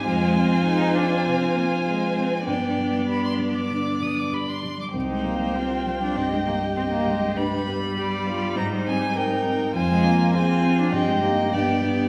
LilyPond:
<<
  \new Staff \with { instrumentName = "Violin" } { \time 4/4 \key g \phrygian \tempo 4 = 99 aes''1 | g''4 b''16 c'''8 d'''8. ees'''16 d'''16 b''16 c'''8 d'''16 | g''1 | b''2 bes''8 aes''8 g''4 |
aes''4 aes''4 g''4 g''4 | }
  \new Staff \with { instrumentName = "Violin" } { \time 4/4 \key g \phrygian c''1 | d''2.~ d''8 r8 | c''2 ees''4 ees''4 | b'8 b'8 d''4 c''4 bes'4 |
c''4 c''4 ees''4 d''4 | }
  \new Staff \with { instrumentName = "Viola" } { \time 4/4 \key g \phrygian f'1 | d'2.~ d'8 r8 | ees'4 f'4 g'2~ | g'4 g'8 f'8 ees'4 ees'4 |
f'4 f'4 g'4 g'4 | }
  \new Staff \with { instrumentName = "Cello" } { \time 4/4 \key g \phrygian \tuplet 3/2 { aes4 c'8 } ees'8 d'8 c'8 bes8 aes8 c'8 | b2. r4 | r16 aes16 bes8 c'8. d'16 c'16 aes16 bes8 c'16 bes16 aes8 | g1 |
r16 aes16 bes8 c'8. d'16 c'16 aes16 bes8 b8 b8 | }
  \new Staff \with { instrumentName = "Grand piano" } { \time 4/4 \key g \phrygian f,8 c'8 aes'4 c8 c'8 aes'8 c'8 | g,8 g8 g'8 g8 d8 g8 g'8 g8 | c,8 g8 g'8 g8 g,8 g8 g'8 g8 | g,8 b8 g'8 b8 aes,8 c'8 c''8 c'8 |
f,8 c'8 aes'8 c'8 g,8 <ees' g'>8 g,8 <d' g'>8 | }
>>